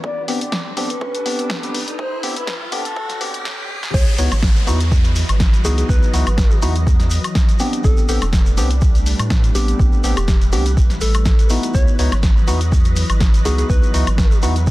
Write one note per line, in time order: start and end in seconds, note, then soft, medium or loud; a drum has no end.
0.00 3.42 D4 medium
0.00 3.42 G4 medium
0.00 3.42 A4 medium
0.00 3.42 B4 medium
0.00 0.23 D5 loud
0.00 1.97 D5 medium
0.00 kick loud
0.00 riser medium
0.28 0.39 B3 medium
0.28 0.40 C4 medium
0.28 0.40 D4 medium
0.28 0.40 G4 loud
0.28 open hi-hat loud
0.41 0.59 D5 medium
0.41 closed hi-hat medium
0.52 kick loud
0.52 snare loud
0.77 0.88 B3 loud
0.77 0.88 C4 medium
0.77 0.88 D4 loud
0.77 0.88 G4 loud
0.77 1.90 B4 loud
0.77 open hi-hat loud
0.90 closed hi-hat medium
1.01 kick loud
1.15 closed hi-hat medium
1.26 1.60 B3 medium
1.26 1.60 C4 medium
1.26 1.60 D4 medium
1.26 1.60 G4 loud
1.26 open hi-hat loud
1.39 closed hi-hat medium
1.50 kick loud
1.50 snare loud
1.63 1.79 B3 medium
1.63 1.79 C4 medium
1.63 1.80 D4 medium
1.63 1.80 G4 medium
1.63 closed hi-hat medium
1.74 open hi-hat loud
1.88 closed hi-hat medium
1.99 2.18 C5 loud
1.99 3.44 E5 medium
1.99 kick loud
2.23 2.35 B3 medium
2.23 2.35 C4 medium
2.23 2.35 D4 medium
2.23 2.35 G4 loud
2.23 open hi-hat loud
2.36 2.54 B4 loud
2.36 closed hi-hat medium
2.47 kick loud
2.47 snare loud
2.72 2.83 B3 loud
2.72 2.83 C4 medium
2.72 2.83 D4 medium
2.72 2.84 G4 loud
2.72 3.45 A4 loud
2.72 open hi-hat loud
2.85 closed hi-hat medium
2.96 kick loud
2.96 swell medium
3.09 snare soft
3.09 closed hi-hat medium
3.21 3.45 B3 medium
3.21 3.45 C4 medium
3.21 3.45 D4 medium
3.21 3.45 G4 loud
3.21 open hi-hat loud
3.34 closed hi-hat medium
3.45 snare loud
3.83 snare medium
3.94 4.04 C#2 loud
3.94 7.80 E3 medium
3.94 7.80 F#3 medium
3.94 7.80 B4 medium
3.94 4.13 C#5 medium
3.94 7.80 D#5 medium
3.94 kick loud
3.94 crash loud
3.94 downlifter medium
3.94 shekere soft
4.08 shekere soft
4.18 4.28 C#2 loud
4.18 4.30 B3 medium
4.18 4.30 D#4 medium
4.18 4.30 E4 medium
4.18 4.30 F#4 loud
4.18 4.38 C#5 loud
4.18 open hi-hat loud
4.18 shekere medium
4.31 4.69 G#1 medium
4.31 snare soft
4.31 closed hi-hat medium
4.31 high woodblock medium
4.31 shekere soft
4.42 kick loud
4.42 snare loud
4.42 shekere soft
4.56 shekere soft
4.67 5.24 E2 loud
4.67 4.78 B3 loud
4.67 4.79 D#4 medium
4.67 4.79 E4 loud
4.67 4.79 F#4 loud
4.67 open hi-hat loud
4.67 shekere medium
4.80 closed hi-hat medium
4.80 shekere soft
4.92 kick loud
4.92 shekere soft
5.04 closed hi-hat medium
5.04 shekere soft
5.16 open hi-hat loud
5.16 shekere loud
5.29 5.60 G#1 loud
5.29 closed hi-hat medium
5.29 high woodblock medium
5.29 shekere soft
5.40 kick loud
5.40 snare loud
5.40 shekere soft
5.54 closed hi-hat medium
5.54 shekere soft
5.65 5.83 C#2 medium
5.65 6.11 B3 medium
5.65 6.11 D#4 medium
5.65 6.11 E4 medium
5.65 6.11 F#4 loud
5.65 5.73 G#4 medium
5.65 open hi-hat loud
5.65 shekere loud
5.78 5.85 G#4 medium
5.78 closed hi-hat medium
5.78 shekere soft
5.89 5.99 C#2 loud
5.89 6.58 B4 loud
5.89 kick loud
5.89 shekere medium
6.03 shekere soft
6.13 6.23 C#2 loud
6.13 6.25 B3 medium
6.13 6.25 D#4 medium
6.13 6.25 E4 medium
6.13 6.25 F#4 loud
6.13 open hi-hat loud
6.13 shekere loud
6.27 6.64 G#1 medium
6.27 closed hi-hat medium
6.27 high woodblock medium
6.27 shekere soft
6.38 kick loud
6.38 snare loud
6.38 shekere medium
6.51 shekere soft
6.62 7.19 E2 loud
6.62 6.74 B3 loud
6.62 6.74 D#4 loud
6.62 6.74 E4 medium
6.62 6.74 F#4 loud
6.62 open hi-hat loud
6.62 shekere medium
6.75 closed hi-hat medium
6.75 shekere soft
6.87 kick loud
6.87 shekere medium
7.00 snare soft
7.00 closed hi-hat medium
7.00 shekere soft
7.11 open hi-hat loud
7.11 shekere loud
7.24 closed hi-hat medium
7.24 high woodblock medium
7.24 shekere soft
7.35 kick loud
7.35 snare loud
7.35 shekere medium
7.49 closed hi-hat medium
7.49 shekere soft
7.59 8.06 B3 medium
7.59 8.06 C4 medium
7.59 8.06 D4 medium
7.59 8.06 G4 loud
7.59 open hi-hat loud
7.59 shekere medium
7.73 closed hi-hat medium
7.73 shekere soft
7.84 7.94 A1 loud
7.84 11.71 G3 medium
7.84 11.71 A3 medium
7.84 9.78 D4 medium
7.84 8.03 A4 medium
7.84 14.71 B4 medium
7.84 kick loud
7.84 shekere medium
7.97 shekere soft
8.08 8.19 A1 loud
8.08 8.20 B3 medium
8.08 8.20 C4 medium
8.08 8.20 D4 medium
8.08 8.20 G4 loud
8.08 8.28 A4 medium
8.08 open hi-hat loud
8.08 shekere loud
8.22 8.59 E1 medium
8.22 snare soft
8.22 closed hi-hat medium
8.22 high woodblock medium
8.22 shekere soft
8.33 kick loud
8.33 snare loud
8.33 shekere medium
8.46 shekere soft
8.57 9.14 C2 medium
8.57 8.69 B3 loud
8.57 8.69 C4 medium
8.57 8.69 D4 medium
8.57 8.69 G4 loud
8.57 open hi-hat loud
8.57 shekere medium
8.71 closed hi-hat medium
8.71 shekere soft
8.81 kick loud
8.81 shekere medium
8.95 closed hi-hat soft
8.95 shekere soft
9.06 open hi-hat loud
9.06 shekere medium
9.19 9.50 A2 loud
9.19 closed hi-hat medium
9.19 high woodblock medium
9.19 shekere soft
9.30 kick loud
9.30 snare loud
9.30 shekere medium
9.44 closed hi-hat medium
9.44 shekere soft
9.55 9.74 A1 medium
9.55 10.01 B3 medium
9.55 10.01 C4 medium
9.55 10.01 D4 medium
9.55 9.74 G4 medium
9.55 10.01 G4 loud
9.55 open hi-hat loud
9.55 shekere medium
9.68 closed hi-hat medium
9.68 shekere soft
9.79 9.89 A1 loud
9.79 14.71 E3 medium
9.79 kick loud
9.79 shekere medium
9.93 shekere soft
10.04 10.14 A1 loud
10.04 10.15 B3 medium
10.04 10.15 C4 medium
10.04 10.15 D4 medium
10.04 10.15 G4 loud
10.04 open hi-hat loud
10.04 shekere medium
10.17 10.54 E1 medium
10.17 10.35 G4 loud
10.17 closed hi-hat medium
10.17 high woodblock medium
10.17 shekere soft
10.28 kick loud
10.28 snare loud
10.28 shekere medium
10.41 closed hi-hat soft
10.41 shekere soft
10.52 10.76 C2 medium
10.52 10.64 B3 loud
10.52 10.64 C4 medium
10.52 10.64 D4 medium
10.52 10.72 G4 medium
10.52 10.64 G4 loud
10.52 open hi-hat loud
10.52 shekere medium
10.66 closed hi-hat medium
10.66 shekere soft
10.77 10.87 A1 medium
10.77 kick loud
10.77 shekere medium
10.90 10.98 A1 loud
10.90 snare soft
10.90 closed hi-hat soft
10.90 shekere soft
11.01 11.58 A1 medium
11.01 11.50 A4 loud
11.01 open hi-hat loud
11.01 shekere loud
11.14 closed hi-hat medium
11.14 high woodblock medium
11.14 shekere soft
11.25 kick loud
11.25 snare loud
11.25 shekere medium
11.39 closed hi-hat medium
11.39 shekere soft
11.50 11.96 B3 medium
11.50 11.96 D#4 medium
11.50 11.96 E4 medium
11.50 11.96 F#4 loud
11.50 open hi-hat loud
11.50 shekere medium
11.63 closed hi-hat medium
11.63 shekere soft
11.74 11.84 C#2 loud
11.74 14.71 F#3 medium
11.74 11.94 C#5 medium
11.74 14.71 D#5 medium
11.74 kick loud
11.74 shekere medium
11.88 shekere soft
11.99 12.09 C#2 loud
11.99 12.10 B3 medium
11.99 12.10 D#4 medium
11.99 12.10 E4 medium
11.99 12.10 F#4 loud
11.99 12.18 C#5 medium
11.99 open hi-hat loud
11.99 shekere medium
12.12 12.49 G#1 medium
12.12 snare soft
12.12 closed hi-hat medium
12.12 high woodblock medium
12.12 shekere soft
12.23 kick loud
12.23 snare loud
12.23 shekere medium
12.37 shekere soft
12.47 13.04 E2 medium
12.47 12.59 B3 loud
12.47 12.59 D#4 medium
12.47 12.59 E4 medium
12.47 12.59 F#4 loud
12.47 open hi-hat loud
12.47 shekere medium
12.61 closed hi-hat medium
12.61 shekere soft
12.72 kick loud
12.72 shekere medium
12.85 closed hi-hat soft
12.85 shekere soft
12.96 open hi-hat loud
12.96 shekere medium
13.10 13.41 G#1 loud
13.10 closed hi-hat medium
13.10 high woodblock medium
13.10 shekere soft
13.20 kick loud
13.20 snare loud
13.20 shekere medium
13.34 closed hi-hat medium
13.34 shekere soft
13.45 13.64 C#2 medium
13.45 13.91 B3 medium
13.45 13.91 D#4 medium
13.45 13.91 E4 medium
13.45 13.91 F#4 loud
13.45 13.54 G#4 medium
13.45 open hi-hat loud
13.45 shekere medium
13.58 13.66 G#4 medium
13.58 closed hi-hat medium
13.58 shekere soft
13.70 13.79 C#2 loud
13.70 14.38 B4 medium
13.70 kick loud
13.70 shekere medium
13.83 shekere soft
13.94 14.04 C#2 loud
13.94 14.05 B3 medium
13.94 14.05 D#4 medium
13.94 14.05 E4 medium
13.94 14.05 F#4 loud
13.94 open hi-hat loud
13.94 shekere medium
14.07 14.44 G#1 medium
14.07 closed hi-hat medium
14.07 high woodblock medium
14.07 shekere soft
14.18 kick loud
14.18 snare loud
14.18 shekere soft
14.31 shekere soft
14.43 14.71 E2 loud
14.43 14.54 B3 loud
14.43 14.54 D#4 medium
14.43 14.54 E4 loud
14.43 14.54 F#4 loud
14.43 open hi-hat loud
14.43 shekere medium
14.56 closed hi-hat medium
14.56 shekere soft
14.67 kick loud
14.67 shekere medium